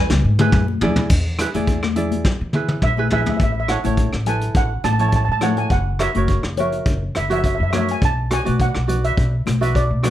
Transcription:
Already playing: B4 G#5
0.10 C#2, snare, high conga
0.25 G#2
0.39 E4 G#4 B4, high tom, high conga
0.52 F#2, kick, mid tom
0.68 high conga
0.81 E2 E4 G#4 D5, floor tom, high conga, low conga
0.96 floor tom
1.09 E2, kick, crash
1.39 E4 G#4 B4, cross-stick, closed hi-hat
1.54 E2 E4 G#4 D5, closed hi-hat, high conga
1.67 kick, closed hi-hat
1.83 cross-stick, high conga
1.96 E4 G#4 D5, closed hi-hat, low conga
2.11 closed hi-hat, high conga
2.25 kick, snare
2.41 E3
2.53 E4 G#4 B4, high tom
2.68 high tom
2.82 A#1 E5, kick, mid tom
2.97 E4 G#4 B4, high conga
3.10 E4 G#4 B4 E5, floor tom, low conga
3.21 E5
3.26 E5, floor tom, high conga
3.37 A1 E5, kick, closed hi-hat
3.43 E5
3.52 E5
3.60 E5
3.68 E4 A4 C#5 F#5, cross-stick, closed hi-hat
3.84 A1 E4 A4 C#5, closed hi-hat, high conga
3.97 kick, closed hi-hat
4.13 A1, cross-stick
4.26 E4 A4 B4 G#5, closed hi-hat, low conga
4.41 closed hi-hat
4.55 A1 F#5, kick, closed hi-hat
4.84 A1 A5, cross-stick, closed hi-hat, high conga
4.93 A5
4.99 E4 A4 C#5 A5, closed hi-hat, low conga
5.09 A5, kick, closed hi-hat
5.16 A5
5.25 A2 A5
5.32 A5
5.41 E4 A4 C#5 F#5, cross-stick, closed hi-hat, high conga, low conga
5.56 G#5, closed hi-hat
5.70 F#1 F#5, kick, closed hi-hat
5.99 F#4 A#4 C#5 E5, cross-stick, closed hi-hat
6.14 F#1 F#4 A#4 C#5, closed hi-hat, high conga
6.28 kick, closed hi-hat
6.43 F#1, cross-stick
6.57 F#4 A#4 C#5 E5, closed hi-hat, low conga
6.72 closed hi-hat
6.85 F#1, kick, closed hi-hat
7.15 F#1 E5, cross-stick, closed hi-hat
7.30 F#4 A#4 C#5 E5, closed hi-hat, low conga
7.39 E5
7.44 E5, kick, closed hi-hat
7.55 E5
7.60 F#2 E5
7.71 F#4 A#4 C#5 E5, cross-stick, closed hi-hat, high conga, low conga
7.78 E5
7.88 G#5, closed hi-hat
8.02 B1 A5, kick, closed hi-hat
8.30 F#4 B4 D5 G#5, cross-stick, closed hi-hat
8.45 B1 F#4 B4 D5, closed hi-hat, high conga
8.60 F#5, kick, closed hi-hat
8.75 B1, cross-stick
8.88 F#4 B4 D5, closed hi-hat, low conga
9.04 E5, closed hi-hat
9.17 B1, kick, closed hi-hat
9.46 B1, cross-stick, closed hi-hat, high conga
9.61 F#4 B4 D5 E5, closed hi-hat, low conga
9.75 D5, kick, closed hi-hat
9.91 B2
10.03 F#4 B4 D5, cross-stick, closed hi-hat, high conga, low conga

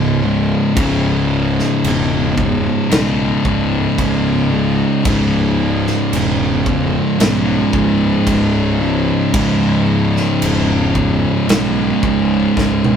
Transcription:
Already playing: C#1 C#2 G#2 C#3
0.22 C#2 G#2 C#3
0.75 C#1 C#2 G#2 C#3, kick, crash
1.59 snare
1.84 E1, crash
2.38 kick
2.90 B1 C#2 G#2 C#3, snare, crash
3.45 C#1, kick
3.98 C#1, kick, crash
4.52 C#2 G#2 C#3
5.04 C#1 C#2 G#2 C#3, kick, crash
5.09 C#3
5.87 snare
6.13 E1, crash
6.66 kick
7.19 B1 C#2 G#2 C#3, snare, crash
7.73 C#1, kick
8.27 C#1, kick, crash
8.80 C#2 G#2 C#3
9.34 C#1 C#2 G#2 C#3, kick, crash
10.16 snare
10.42 E1, crash
10.95 kick
11.48 B1 C#2 G#2 C#3, snare, crash
12.03 C#1, kick
12.57 C#1, kick, snare
12.84 mid tom

